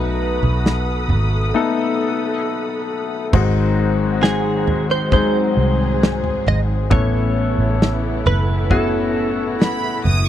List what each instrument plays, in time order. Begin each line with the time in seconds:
Already playing: fingered electric bass B1, grand piano B2 F#3 A3 B3 D#4 F#4, string section A4 F#5 B5 D#6, clean electric guitar B4
0.43 fingered electric bass B1, floor tom
0.66 snare
1.08 fingered electric bass G#1, floor tom
1.54 grand piano A3 B3 D#4 A4
3.33 fingered electric bass G#1, grand piano G#2 D#3 G#3 C4 D#4 F#4, string section D#3 F#3 G#3 C4 F#4, kick, floor tom, crash
4.23 clean electric guitar G#4, snare
4.67 floor tom
4.91 clean electric guitar C5
5.12 grand piano G#3 C4 D#4 G#4, string section G#4, clean electric guitar C5, kick, floor tom
5.57 fingered electric bass C2
6.03 snare
6.24 floor tom
6.46 fingered electric bass G#1, clean electric guitar D#5, floor tom
6.90 fingered electric bass A1, grand piano A2 E3 B3 C#4 E4 A4, string section C#3 E3 A3 B3 E4, clean electric guitar C#5, kick, floor tom
7.58 fingered electric bass A1
7.82 snare
8.26 fingered electric bass F#1, clean electric guitar B4, floor tom
8.70 grand piano B3 C#4 E4 F#4, clean electric guitar A4, kick, floor tom
9.61 violin section B5, snare
10.04 fingered electric bass F#1, violin section D#6, floor tom